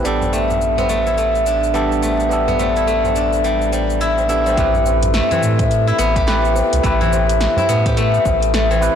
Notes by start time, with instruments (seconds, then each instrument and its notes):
0.03 sub bass A1, guzheng G3, tine electric piano B3 D4 G4, cabasa
0.07 tine electric piano A4
0.22 tabla tin, tabla ge, cabasa
0.33 guzheng A3, tabla na, cabasa
0.50 tabla ge, cabasa
0.62 cabasa
0.78 guzheng B3, tabla na, tabla ge, cabasa
0.89 guzheng A3, cabasa
1.07 guzheng E4, tabla tin, cabasa
1.18 guzheng A3, cabasa
1.35 cabasa
1.46 guzheng D4, tabla na, cabasa
1.64 cabasa
1.74 guzheng G3, tine electric piano B3 D4 G4 A4, cabasa
1.92 cabasa
2.02 guzheng A3, tabla na, tabla tin, cabasa
2.20 cabasa
2.29 tine electric piano B3 D4 G4 A4, cabasa
2.47 guzheng B3, tabla tin, tabla ge, cabasa
2.59 guzheng A3, tabla na, cabasa
2.76 guzheng E4, cabasa
2.87 guzheng A3, cabasa
3.05 tabla na, tabla ge, cabasa
3.16 guzheng D4, cabasa
3.33 tabla tin, cabasa
3.44 guzheng G3, cabasa
3.62 cabasa
3.72 guzheng G3, tabla tin, cabasa
3.90 cabasa
4.01 guzheng E4, cabasa
4.18 tabla na, tabla tin, cabasa
4.28 tine electric piano B3 D4 G4 A4, guzheng E4, cabasa
4.46 guzheng G3, tabla na, cabasa
4.56 sub bass A1, guzheng A3, tine electric piano C4 E4 G4, kick, closed hi-hat, cabasa
4.60 tine electric piano B4
4.74 tabla tin, tabla ge, cabasa
4.86 tabla na, cabasa
5.03 closed hi-hat, tabla ge, cabasa
5.14 guzheng A3, snare, closed hi-hat, cabasa
5.31 guzheng E3, tabla na, tabla ge, cabasa
5.43 sub bass A2, cabasa
5.59 kick, closed hi-hat, tabla tin, cabasa
5.71 closed hi-hat, cabasa
5.87 guzheng E4, cabasa
5.98 sub bass A1, guzheng B3, tabla na, cabasa
6.16 guzheng G4, kick, closed hi-hat, cabasa
6.27 guzheng A3, tine electric piano E4 G4 B4, snare, closed hi-hat, cabasa
6.45 cabasa
6.56 tabla na, tabla tin, cabasa
6.73 sub bass C2, closed hi-hat, cabasa
6.83 sub bass A1, guzheng A3, tine electric piano E4 G4 B4, kick, closed hi-hat, cabasa
7.01 guzheng E3, tabla tin, tabla ge, cabasa
7.13 tabla na, cabasa
7.29 closed hi-hat, cabasa
7.41 snare, closed hi-hat, cabasa
7.57 guzheng E4, tabla na, tabla ge, cabasa
7.69 sub bass A2, guzheng B3, cabasa
7.86 guzheng G4, kick, closed hi-hat, tabla tin, cabasa
7.97 guzheng A3, closed hi-hat, cabasa
8.14 cabasa
8.26 sub bass A1, kick, tabla tin, cabasa
8.42 closed hi-hat, cabasa
8.54 guzheng A3, snare, closed hi-hat, cabasa
8.71 guzheng E3, tabla na, tabla tin, cabasa
8.81 tine electric piano C4 E4 G4 B4, cabasa